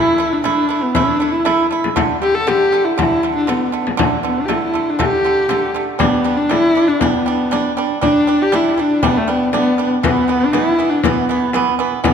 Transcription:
Already playing: A3 E4
0.18 A3 E4
0.32 D4, frame drum
0.44 A3 D4 E4, frame drum
0.69 A3 E4, frame drum
0.83 B3
0.95 A3 D4 E4, frame drum
1.20 A3 E4
1.32 E4, frame drum
1.45 A3 E4, frame drum
1.71 A3 E4
1.84 frame drum
1.96 D3 A3, frame drum
2.22 D3 A3 G4
2.35 A4, frame drum
2.47 D3 A3 G4, frame drum
2.72 D3 A3, frame drum
2.85 E4
2.98 D3 A3 E4, frame drum
3.23 D3 A3
3.36 D4, frame drum
3.47 D3 A3 B3, frame drum
3.72 D3 A3
3.87 frame drum
3.97 D3 A3, frame drum
4.23 D3 A3 B3
4.37 D4, frame drum
4.46 D3 A3 G4, frame drum
4.52 E4
4.64 E4
4.74 D3 A3, frame drum
4.90 D4
4.99 D3 A3 G4, frame drum
5.25 D3 A3
5.37 frame drum
5.49 D3 A3, frame drum
5.74 D3 A3
5.99 G3 B3 D4, frame drum
6.24 G3 D4
6.37 D4
6.49 G3 D4 E4, frame drum
6.75 G3 D4, frame drum
6.88 D4, frame drum
7.00 G3 B3 D4, frame drum
7.26 G3 D4
7.51 G3 D4, frame drum
7.77 G3 D4
7.90 frame drum
8.01 G3 D4, frame drum
8.27 G3 D4
8.42 G4
8.52 G3 D4 E4, frame drum
8.66 E4
8.77 G3 D4, frame drum
8.90 frame drum
9.03 G3 B3 D4, frame drum
9.18 A3
9.28 G3 B3 D4
9.53 G3 B3 D4, frame drum
9.78 G3 D4
9.91 frame drum
10.03 E3 B3, frame drum
10.28 E3 B3
10.41 D4
10.52 E3 B3 E4, frame drum
10.79 E3 B3, frame drum
10.90 D4, frame drum
11.03 E3 B3, frame drum
11.29 E3 B3
11.53 E3 B3, frame drum
11.79 E3 B3
11.91 frame drum
12.04 E3 B3, frame drum

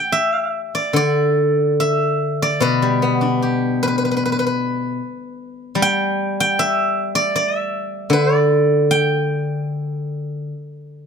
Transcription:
Already playing: G4 G5 A5
0.12 E5
0.75 D5
0.93 D3 D5
1.80 E5
2.42 D5
2.60 B2 B4
2.82 G3
3.02 B3
3.21 D4
3.42 G4
3.83 B4
3.88 B4
3.98 B4
4.05 B4
4.11 B4
4.17 B4
4.25 B4
4.32 B4
4.39 B4
4.46 B4
5.75 G3
5.82 G5
6.40 G5
6.59 E5
7.15 D5
7.36 D5
7.58 E5
8.10 D3 B4
8.37 D5
8.91 G5

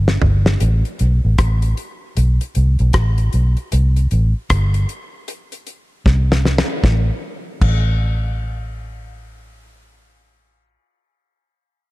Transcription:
Already playing: G1
0.08 snare
0.22 G1, floor tom
0.46 snare
0.60 A1, closed hi-hat
0.85 closed hi-hat
0.99 B1, closed hi-hat
1.25 A1
1.38 kick, cross-stick, closed hi-hat
1.62 closed hi-hat
1.77 closed hi-hat
2.17 B1, closed hi-hat
2.41 closed hi-hat
2.55 C2, closed hi-hat
2.79 B1, closed hi-hat
2.93 A1, kick, cross-stick, closed hi-hat
3.18 closed hi-hat
3.33 B1, closed hi-hat
3.57 closed hi-hat
3.72 C2, closed hi-hat
3.96 closed hi-hat
4.11 A1, closed hi-hat
4.50 G1, kick, cross-stick, closed hi-hat
4.74 closed hi-hat
4.89 closed hi-hat
5.28 closed hi-hat
5.52 closed hi-hat
5.67 closed hi-hat
6.06 C2, kick, snare
6.32 snare
6.45 snare
6.58 snare
6.84 A1, kick, snare
7.62 A1, kick, crash

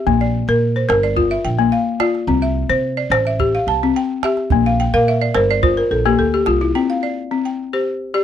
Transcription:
Already playing: E5
0.06 A#1 A#3, calabash thump
0.21 D5
0.48 A#2 A#4
0.76 C5
0.89 G1 A#4, calabash click
1.03 D5, calabash click
1.17 F4, calabash thump
1.31 E5
1.45 A#1 G5, calabash click
1.59 A#3
1.72 F5
2.00 F4 D5, calabash click
2.15 calabash click
2.27 C2 C4, calabash thump
2.42 E5
2.69 C3 C5
2.97 D5
3.10 A1 C5, calabash click
3.25 E5, calabash click
3.39 G4, calabash thump
3.55 F5
3.67 C2 A5, calabash click
3.83 C4
3.96 G5
4.23 G4 E5, calabash click
4.37 calabash click
4.50 A#1 A#3, calabash thump
4.66 F5
4.80 G5
4.93 A#2 A#4 F5
5.08 E5
5.21 D5
5.34 G1 A#4 C5, calabash click
5.51 D5
5.63 F4 C5, calabash thump
5.77 A#4
5.91 A#1 A4
6.06 A#3 G4
6.18 D2 A4
6.34 G4
6.46 C2 F4, calabash click
6.61 E4
6.75 C4 G5
6.90 F5
7.03 D5
7.31 C4
7.45 G5
7.73 G4 C5
8.14 G4 D5

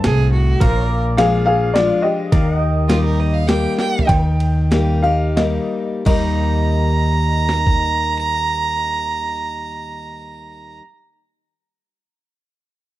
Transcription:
Already playing: A4 C5 F5 A5
0.04 C2 A2 G#4, snare, ride
0.32 F#4
0.60 A#1 A#2 A#4 C5 F5, kick, ride
0.86 D5
1.17 F3 G#3 D4 F4 G#4 F5, snare, ride
1.46 G#4 F5
1.74 F3 G#3 D4 F4 D5, snare, ride
2.02 G4 D#5
2.32 D#2 D#3 A#4 D5 F5, kick, ride
2.53 D#5
2.60 G5
2.89 G3 A#3 D#4 F4 G4, snare, ride
3.05 A#4
3.20 D#5
3.34 F5
3.48 G3 A#3 D#4 G4 G5, snare, ride
3.78 G5, snare
3.99 floor tom
4.07 D#2 D#3 G5, kick, ride
4.40 ride
4.71 G3 A#3 D#4 G4, snare, ride
5.02 D#4 G4 F5
5.37 G3 A#3 D#4 G4 D#5, snare, ride
6.05 D#2 D#3 G3 A#3 D#4 G4 D#5 A#5, kick, crash
7.49 snare
7.67 kick

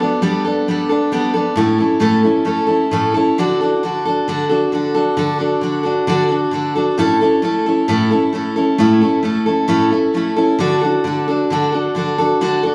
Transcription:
0.00 B3 D4 A4
0.22 G3 B3 D4 A4
0.44 B3 D4 A4
0.68 G3 B3 D4 A4
0.89 B3 D4 A4
1.12 G3 B3 D4 A4
1.34 B3 D4 A4
1.56 A2 A3 C#4 E4 A4
1.78 C#4 E4 A4
2.00 A2 A3 C#4 E4 A4
2.23 C#4 E4 A4
2.45 A3 C#4 E4 A4
2.67 C#4 E4 A4
2.91 A2 A3 C#4 E4 A4
3.14 C#4 E4 A4
3.38 D3 D4 F#4 A4
3.61 D4 F#4 A4
3.83 D3 D4 F#4 A4
4.05 D4 F#4 A4
4.28 D3 D4 F#4 A4
4.49 D4 F#4 A4
4.72 D3 D4 F#4 A4
4.94 D4 F#4 A4
5.17 D3 D4 F#4 A4
5.39 D4 F#4 A4
5.61 D3 D4 F#4 A4
5.83 D4 F#4 A4
6.07 D3 D4 F#4 A4
6.29 D4 F#4 A4
6.51 D3 D4 F#4 A4
6.75 D4 F#4 A4
6.98 A2 A3 C#4 E4 A4
7.21 C#4 E4 A4
7.42 A3 C#4 E4 A4
7.66 C#4 E4 A4
7.88 A2 A3 C#4 E4 A4
8.11 C#4 E4 A4
8.33 A3 C#4 E4 A4
8.56 C#4 E4 A4
8.78 A2 A3 C#4 E4 A4
9.01 C#4 E4 A4
9.23 A3 C#4 E4 A4
9.46 C#4 E4 A4
9.68 A2 A3 C#4 E4 A4
9.90 C#4 E4 A4
10.14 A3 C#4 E4 A4
10.36 C#4 E4 A4
10.59 D3 D4 F#4 A4
10.81 D4 F#4 A4
11.04 D3 D4 F#4 A4
11.28 D4 F#4 A4
11.50 D3 D4 F#4 A4
11.72 D4 F#4 A4
11.95 D3 D4 F#4 A4
12.18 D4 F#4 A4
12.41 D3 D4 F#4 A4
12.63 D4 F#4 A4

